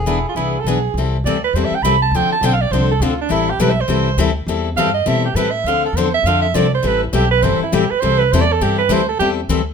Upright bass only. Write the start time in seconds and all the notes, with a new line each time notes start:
Already playing: E1
0.35 C2
0.64 B1
0.94 C2
1.24 D2
1.53 E2
1.71 muted upright bass stroke
1.82 C2
2.11 D2
2.28 muted upright bass stroke
2.41 B1
2.71 C2
3.00 D2
3.30 A1
3.59 B1
3.88 C2
4.17 D2
4.47 E2
4.76 G2
5.06 B2
5.35 A2
5.64 D2
5.93 E2
6.23 F2
6.54 C2
6.83 A1
7.13 B1
7.42 G1
7.59 muted upright bass stroke
7.72 A1
7.91 muted upright bass stroke
8.02 C2
8.32 E2
8.61 G2
8.89 D2
9.19 E2
9.49 D2